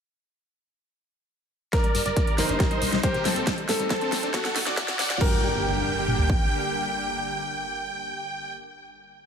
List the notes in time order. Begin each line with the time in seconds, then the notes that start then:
1.73 D3 G3 A#3 G4 A#4 D5, kick, snare, closed hi-hat, riser, shekere
1.84 G3, closed hi-hat
1.95 G1 G3, open hi-hat, shekere
2.06 G1 D3 G3 A#3 G4 A#4 D5, closed hi-hat, shekere
2.16 G3, kick, closed hi-hat, shekere
2.27 D3 G3 A#3 D4 G4, closed hi-hat
2.38 G1 F#3 D#4 A#4 C5, snare, open hi-hat, shekere
2.49 G1 D3 G3 A#3 D4 G4, closed hi-hat, shekere
2.60 G4, kick, snare, closed hi-hat, shekere
2.70 G3 D#4 C5, closed hi-hat, shekere
2.82 C2 C3 G3 A#3 D#4, open hi-hat, shekere
2.92 C2 G3, snare, closed hi-hat, shekere
3.03 C3 G3 A#3 D#4 G4 A#4 C5, kick, closed hi-hat, shekere
3.14 C2 G4, closed hi-hat, shekere
3.25 C2 C3 F#3 G3 A#3 C4 D#4 A4, snare, open hi-hat, shekere
3.36 C2 G3, closed hi-hat, shekere
3.47 C3 D#3 G3 A3 D#4, kick, snare, closed hi-hat, shekere
3.58 G3, closed hi-hat
3.69 A1 G3 A4, snare, open hi-hat, shekere
3.79 A1 C3 D#3 G3 A3 D#4, closed hi-hat, shekere
3.90 G3 C4 A4, kick, snare, closed hi-hat, shekere
4.01 C3 D#3 A3 D4 D#4, closed hi-hat
4.12 A1 F#3, snare, open hi-hat, shekere
4.23 A1 C3 D#3 A3 D4 D#4, closed hi-hat, shekere
4.34 F#4 A4, kick, snare, closed hi-hat, shekere
4.45 F#3, snare, closed hi-hat, shekere
4.56 D2 C3 F#3 A3 D4, snare, open hi-hat, shekere
4.67 D2 F#3 F#4 D5, snare, closed hi-hat, shekere
4.77 C3 F#3 A3 D4, kick, snare, closed hi-hat, shekere
4.88 D2 F#4, snare, closed hi-hat, shekere
4.99 D2 C3 F#3 A3 D4 D5 F#5, snare, open hi-hat, shekere
5.10 D2 F#3, snare, closed hi-hat, shekere
5.21 G1 D3 G3 A#3 G4 A#4 G5, kick, crash, impact
6.08 mid tom
6.19 floor tom
6.30 kick